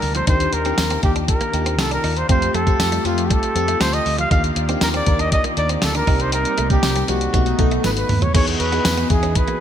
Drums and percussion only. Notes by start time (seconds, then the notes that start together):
0.02 open hi-hat
0.15 closed hi-hat
0.27 kick, closed hi-hat
0.40 closed hi-hat
0.53 closed hi-hat
0.65 closed hi-hat
0.78 snare, closed hi-hat, tambourine
0.90 closed hi-hat
1.03 kick, closed hi-hat
1.16 closed hi-hat
1.28 kick, closed hi-hat
1.41 closed hi-hat
1.54 closed hi-hat
1.66 closed hi-hat
1.79 snare, closed hi-hat, tambourine
1.91 closed hi-hat
2.04 open hi-hat
2.17 closed hi-hat
2.29 kick, closed hi-hat
2.42 closed hi-hat
2.54 closed hi-hat
2.67 kick, closed hi-hat
2.80 snare, closed hi-hat, tambourine
2.92 closed hi-hat
3.05 closed hi-hat
3.18 closed hi-hat
3.30 kick, closed hi-hat
3.43 closed hi-hat
3.56 closed hi-hat
3.68 closed hi-hat
3.81 snare, closed hi-hat, tambourine
3.93 closed hi-hat
4.06 open hi-hat
4.18 closed hi-hat
4.31 kick, closed hi-hat
4.44 closed hi-hat
4.56 closed hi-hat
4.69 closed hi-hat
4.81 snare, closed hi-hat, tambourine
4.94 closed hi-hat
5.06 kick, closed hi-hat
5.19 closed hi-hat
5.32 kick, closed hi-hat
5.44 closed hi-hat
5.57 closed hi-hat
5.69 closed hi-hat
5.82 snare, closed hi-hat, tambourine
5.95 closed hi-hat
6.07 kick, open hi-hat
6.20 closed hi-hat
6.32 closed hi-hat
6.45 closed hi-hat
6.58 closed hi-hat
6.70 kick, closed hi-hat
6.83 snare, closed hi-hat, tambourine
6.96 closed hi-hat
7.08 closed hi-hat
7.21 closed hi-hat
7.34 kick, closed hi-hat
7.46 closed hi-hat
7.59 kick, closed hi-hat
7.71 closed hi-hat
7.84 snare, closed hi-hat, tambourine
7.97 closed hi-hat
8.09 mid tom, open hi-hat
8.22 closed hi-hat, floor tom
8.35 kick, closed hi-hat, crash
8.48 closed hi-hat
8.60 closed hi-hat
8.72 closed hi-hat
8.85 snare, closed hi-hat, tambourine
8.97 closed hi-hat
9.10 kick, closed hi-hat
9.23 closed hi-hat
9.35 kick, closed hi-hat
9.48 closed hi-hat